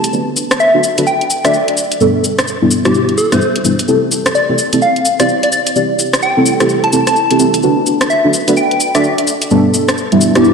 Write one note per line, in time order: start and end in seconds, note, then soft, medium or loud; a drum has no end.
0.00 0.11 C4 medium
0.00 0.11 E4 medium
0.00 0.11 G4 medium
0.00 0.11 A4 loud
0.04 closed hi-hat medium
0.04 shaker soft
0.13 0.71 D4 medium
0.13 0.71 F#4 medium
0.13 0.71 A4 medium
0.13 0.71 B4 medium
0.13 shaker soft
0.37 shaker medium
0.51 cross-stick medium
0.51 closed hi-hat medium
0.51 shaker soft
0.60 0.73 E5 medium
0.60 shaker soft
0.74 0.81 D4 medium
0.74 0.81 F#4 medium
0.74 0.81 A4 medium
0.74 0.81 B4 medium
0.84 shaker medium
0.98 1.05 D4 medium
0.98 1.05 F#4 medium
0.98 1.05 A4 medium
0.98 1.05 B4 loud
0.98 closed hi-hat medium
0.98 shaker soft
1.07 1.42 G5 medium
1.07 shaker soft
1.21 closed hi-hat soft
1.30 shaker medium
1.45 1.56 D4 medium
1.45 1.56 F#4 medium
1.45 1.56 A4 medium
1.45 1.56 D5 loud
1.45 1.53 E5 medium
1.45 cross-stick soft
1.45 closed hi-hat medium
1.45 shaker soft
1.54 shaker soft
1.68 closed hi-hat soft
1.77 shaker medium
1.92 closed hi-hat medium
1.92 shaker soft
2.01 2.58 G3 medium
2.01 2.59 B3 medium
2.01 2.59 D4 medium
2.01 2.58 A4 medium
2.01 shaker soft
2.24 shaker medium
2.39 cross-stick soft
2.39 closed hi-hat medium
2.39 shaker soft
2.48 shaker soft
2.62 2.82 G3 medium
2.62 2.82 B3 medium
2.62 2.82 D4 medium
2.62 2.82 E4 medium
2.71 shaker medium
2.85 3.16 G3 medium
2.85 3.16 B3 medium
2.85 3.16 D4 medium
2.85 3.16 E4 medium
2.85 3.16 G4 medium
2.85 cross-stick soft
2.85 closed hi-hat medium
2.85 shaker soft
2.94 shaker soft
3.09 closed hi-hat soft
3.18 3.29 A4 medium
3.18 shaker medium
3.32 3.39 G3 medium
3.32 3.39 B3 medium
3.32 3.39 D4 medium
3.32 3.39 E4 medium
3.32 3.65 C5 medium
3.32 cross-stick soft
3.32 closed hi-hat medium
3.32 shaker soft
3.41 shaker soft
3.56 closed hi-hat soft
3.65 3.75 G3 medium
3.65 3.75 B3 medium
3.65 3.75 D4 medium
3.65 3.75 E4 medium
3.65 shaker medium
3.79 closed hi-hat medium
3.79 shaker soft
3.88 4.46 C4 medium
3.88 4.46 E4 medium
3.88 4.46 G4 medium
3.88 4.46 A4 medium
3.88 shaker soft
4.12 shaker medium
4.26 cross-stick soft
4.26 closed hi-hat medium
4.26 shaker soft
4.35 4.48 D5 medium
4.35 shaker soft
4.49 4.56 C4 medium
4.49 4.56 E4 medium
4.49 4.56 G4 medium
4.49 4.56 A4 medium
4.58 shaker medium
4.73 4.80 C4 medium
4.73 4.80 E4 medium
4.73 4.80 G4 medium
4.73 4.80 A4 medium
4.73 closed hi-hat medium
4.73 shaker soft
4.82 5.17 F5 medium
4.82 shaker soft
4.96 closed hi-hat soft
5.05 shaker medium
5.20 5.31 C4 medium
5.20 5.31 E4 medium
5.20 5.31 G4 medium
5.20 5.31 C5 loud
5.20 5.28 D5 medium
5.20 cross-stick soft
5.20 closed hi-hat medium
5.20 shaker soft
5.29 shaker soft
5.43 5.49 D5 medium
5.43 closed hi-hat medium
5.52 5.62 D5 medium
5.52 shaker medium
5.67 closed hi-hat medium
5.67 shaker soft
5.76 6.34 C4 medium
5.76 6.33 E4 medium
5.76 6.34 G4 medium
5.76 6.34 D5 medium
5.76 shaker soft
5.99 shaker medium
6.13 cross-stick soft
6.13 closed hi-hat medium
6.13 shaker soft
6.22 6.36 G5 medium
6.22 shaker soft
6.37 6.57 C4 medium
6.37 6.57 E4 medium
6.37 6.57 G4 medium
6.37 6.57 A4 medium
6.46 shaker medium
6.60 6.91 C4 medium
6.60 6.91 E4 medium
6.60 6.91 G4 medium
6.60 6.91 A4 loud
6.60 cross-stick soft
6.60 closed hi-hat medium
6.60 shaker soft
6.69 shaker soft
6.84 7.04 A5 medium
6.84 closed hi-hat soft
6.93 7.04 C4 medium
6.93 7.04 E4 medium
6.93 7.04 G4 medium
6.93 7.04 A4 medium
6.93 shaker medium
7.07 7.54 A5 medium
7.07 cross-stick soft
7.07 closed hi-hat medium
7.07 shaker soft
7.16 shaker soft
7.31 7.38 C4 medium
7.31 7.38 E4 medium
7.31 7.38 G4 medium
7.31 7.38 A4 medium
7.31 closed hi-hat medium
7.40 7.61 C4 medium
7.40 7.61 E4 medium
7.40 7.61 G4 medium
7.40 7.61 A4 medium
7.40 shaker medium
7.54 closed hi-hat medium
7.54 shaker soft
7.63 8.21 D4 medium
7.63 8.21 F#4 medium
7.63 8.21 A4 medium
7.63 8.21 B4 medium
7.63 shaker soft
7.86 shaker medium
8.01 cross-stick soft
8.01 closed hi-hat medium
8.01 shaker soft
8.10 8.23 E5 medium
8.10 shaker soft
8.24 8.31 D4 medium
8.24 8.31 F#4 medium
8.24 8.31 A4 medium
8.24 8.31 B4 medium
8.33 shaker medium
8.48 8.55 D4 medium
8.48 8.55 F#4 medium
8.48 8.55 A4 medium
8.48 8.55 B4 loud
8.48 closed hi-hat medium
8.48 shaker soft
8.57 8.92 G5 medium
8.57 shaker soft
8.71 closed hi-hat soft
8.80 shaker medium
8.95 9.07 D4 medium
8.95 9.07 F#4 medium
8.95 9.07 A4 medium
8.95 9.07 D5 loud
8.95 9.03 E5 medium
8.95 cross-stick soft
8.95 closed hi-hat medium
8.95 shaker soft
9.04 shaker soft
9.18 closed hi-hat medium
9.27 shaker medium
9.42 closed hi-hat medium
9.42 shaker soft
9.51 10.09 G3 medium
9.51 10.09 B3 medium
9.51 10.09 D4 medium
9.51 10.09 A4 medium
9.51 shaker soft
9.74 shaker medium
9.89 cross-stick medium
9.89 closed hi-hat medium
9.89 shaker soft
9.98 shaker soft
10.12 10.32 G3 medium
10.12 10.32 B3 medium
10.12 10.32 D4 medium
10.12 10.32 E4 medium
10.12 closed hi-hat soft
10.21 shaker medium
10.35 10.54 G3 medium
10.35 10.54 B3 medium
10.35 10.54 D4 medium
10.35 10.54 E4 loud
10.35 10.54 G4 loud
10.35 cross-stick soft
10.35 closed hi-hat medium
10.35 shaker soft
10.44 shaker soft